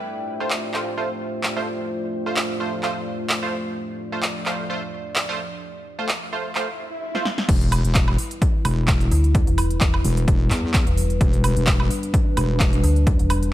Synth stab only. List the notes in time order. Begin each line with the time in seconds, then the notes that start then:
0.40 A3 F4 C5
0.74 A3 F4 C5
0.97 A3 F4 C5
1.57 A3 F4 C5
2.26 A3 F4 C5
2.60 A3 F4 C5
2.83 A3 F4 C5
3.43 A3 F4 C5
4.12 A3 F4 C5
4.46 A3 F4 C5
4.70 A3 F4 C5
5.29 A3 F4 C5
5.98 A3 F4 C5
6.32 A3 F4 C5
6.56 A3 F4 C5
7.15 A3 F4 C5